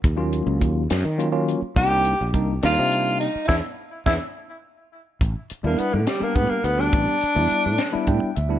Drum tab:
HH |xxxxxx|xxxxxx|------|xxxxxx|
SD |---o--|---o--|o-o---|---o--|
BD |o-o---|o-o---|o-o---|o---o-|

HH |xxxxxx|
SD |---o--|
BD |o---o-|